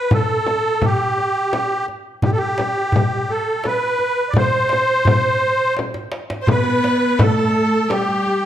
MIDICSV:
0, 0, Header, 1, 6, 480
1, 0, Start_track
1, 0, Tempo, 708383
1, 75, Time_signature, 3, 2, 24, 8
1, 5730, End_track
2, 0, Start_track
2, 0, Title_t, "Violin"
2, 0, Program_c, 0, 40
2, 4348, Note_on_c, 0, 72, 56
2, 4399, Note_on_c, 0, 71, 83
2, 4409, Note_off_c, 0, 72, 0
2, 4871, Note_on_c, 0, 69, 77
2, 4881, Note_off_c, 0, 71, 0
2, 5343, Note_on_c, 0, 67, 73
2, 5354, Note_off_c, 0, 69, 0
2, 5730, Note_off_c, 0, 67, 0
2, 5730, End_track
3, 0, Start_track
3, 0, Title_t, "Accordion"
3, 0, Program_c, 1, 21
3, 0, Note_on_c, 1, 71, 84
3, 88, Note_off_c, 1, 71, 0
3, 91, Note_on_c, 1, 69, 94
3, 576, Note_on_c, 1, 67, 86
3, 578, Note_off_c, 1, 69, 0
3, 1259, Note_off_c, 1, 67, 0
3, 1516, Note_on_c, 1, 67, 71
3, 1565, Note_off_c, 1, 67, 0
3, 1572, Note_on_c, 1, 69, 61
3, 1607, Note_on_c, 1, 67, 87
3, 1615, Note_off_c, 1, 69, 0
3, 2238, Note_on_c, 1, 69, 82
3, 2253, Note_off_c, 1, 67, 0
3, 2481, Note_on_c, 1, 71, 93
3, 2485, Note_off_c, 1, 69, 0
3, 2909, Note_on_c, 1, 74, 69
3, 2924, Note_off_c, 1, 71, 0
3, 2956, Note_off_c, 1, 74, 0
3, 2965, Note_on_c, 1, 72, 99
3, 3893, Note_off_c, 1, 72, 0
3, 4352, Note_on_c, 1, 72, 60
3, 4398, Note_off_c, 1, 72, 0
3, 4406, Note_on_c, 1, 71, 95
3, 4891, Note_on_c, 1, 69, 96
3, 4895, Note_off_c, 1, 71, 0
3, 5362, Note_on_c, 1, 67, 83
3, 5377, Note_off_c, 1, 69, 0
3, 5730, Note_off_c, 1, 67, 0
3, 5730, End_track
4, 0, Start_track
4, 0, Title_t, "Cello"
4, 0, Program_c, 2, 42
4, 4391, Note_on_c, 2, 59, 77
4, 4872, Note_on_c, 2, 57, 78
4, 4883, Note_off_c, 2, 59, 0
4, 5354, Note_off_c, 2, 57, 0
4, 5356, Note_on_c, 2, 55, 71
4, 5730, Note_off_c, 2, 55, 0
4, 5730, End_track
5, 0, Start_track
5, 0, Title_t, "Frame drum"
5, 75, Note_on_c, 9, 64, 77
5, 143, Note_off_c, 9, 64, 0
5, 315, Note_on_c, 9, 64, 60
5, 383, Note_off_c, 9, 64, 0
5, 553, Note_on_c, 9, 64, 75
5, 621, Note_off_c, 9, 64, 0
5, 1036, Note_on_c, 9, 64, 65
5, 1104, Note_off_c, 9, 64, 0
5, 1513, Note_on_c, 9, 64, 69
5, 1581, Note_off_c, 9, 64, 0
5, 1758, Note_on_c, 9, 64, 67
5, 1826, Note_off_c, 9, 64, 0
5, 2004, Note_on_c, 9, 64, 80
5, 2072, Note_off_c, 9, 64, 0
5, 2475, Note_on_c, 9, 64, 57
5, 2543, Note_off_c, 9, 64, 0
5, 2957, Note_on_c, 9, 64, 93
5, 3025, Note_off_c, 9, 64, 0
5, 3204, Note_on_c, 9, 64, 54
5, 3272, Note_off_c, 9, 64, 0
5, 3438, Note_on_c, 9, 64, 91
5, 3506, Note_off_c, 9, 64, 0
5, 3923, Note_on_c, 9, 64, 64
5, 3990, Note_off_c, 9, 64, 0
5, 4393, Note_on_c, 9, 64, 91
5, 4461, Note_off_c, 9, 64, 0
5, 4875, Note_on_c, 9, 64, 92
5, 4943, Note_off_c, 9, 64, 0
5, 5354, Note_on_c, 9, 64, 63
5, 5421, Note_off_c, 9, 64, 0
5, 5730, End_track
6, 0, Start_track
6, 0, Title_t, "Tombak"
6, 74, Note_on_c, 9, 64, 71
6, 141, Note_off_c, 9, 64, 0
6, 554, Note_on_c, 9, 64, 73
6, 622, Note_off_c, 9, 64, 0
6, 797, Note_on_c, 9, 62, 25
6, 865, Note_off_c, 9, 62, 0
6, 1037, Note_on_c, 9, 63, 63
6, 1105, Note_off_c, 9, 63, 0
6, 1275, Note_on_c, 9, 62, 26
6, 1343, Note_off_c, 9, 62, 0
6, 1507, Note_on_c, 9, 64, 79
6, 1575, Note_off_c, 9, 64, 0
6, 1747, Note_on_c, 9, 63, 62
6, 1814, Note_off_c, 9, 63, 0
6, 1981, Note_on_c, 9, 64, 78
6, 2048, Note_off_c, 9, 64, 0
6, 2224, Note_on_c, 9, 62, 27
6, 2292, Note_off_c, 9, 62, 0
6, 2464, Note_on_c, 9, 63, 55
6, 2532, Note_off_c, 9, 63, 0
6, 2701, Note_on_c, 9, 62, 26
6, 2769, Note_off_c, 9, 62, 0
6, 2938, Note_on_c, 9, 64, 78
6, 3006, Note_off_c, 9, 64, 0
6, 3179, Note_on_c, 9, 63, 53
6, 3247, Note_off_c, 9, 63, 0
6, 3423, Note_on_c, 9, 64, 83
6, 3490, Note_off_c, 9, 64, 0
6, 3665, Note_on_c, 9, 62, 25
6, 3733, Note_off_c, 9, 62, 0
6, 3907, Note_on_c, 9, 63, 52
6, 3975, Note_off_c, 9, 63, 0
6, 4027, Note_on_c, 9, 62, 58
6, 4095, Note_off_c, 9, 62, 0
6, 4144, Note_on_c, 9, 63, 72
6, 4212, Note_off_c, 9, 63, 0
6, 4269, Note_on_c, 9, 62, 80
6, 4337, Note_off_c, 9, 62, 0
6, 4386, Note_on_c, 9, 64, 83
6, 4454, Note_off_c, 9, 64, 0
6, 4635, Note_on_c, 9, 63, 65
6, 4703, Note_off_c, 9, 63, 0
6, 4873, Note_on_c, 9, 64, 97
6, 4941, Note_off_c, 9, 64, 0
6, 5117, Note_on_c, 9, 62, 26
6, 5185, Note_off_c, 9, 62, 0
6, 5358, Note_on_c, 9, 63, 73
6, 5426, Note_off_c, 9, 63, 0
6, 5476, Note_on_c, 9, 62, 25
6, 5544, Note_off_c, 9, 62, 0
6, 5598, Note_on_c, 9, 62, 25
6, 5665, Note_off_c, 9, 62, 0
6, 5730, End_track
0, 0, End_of_file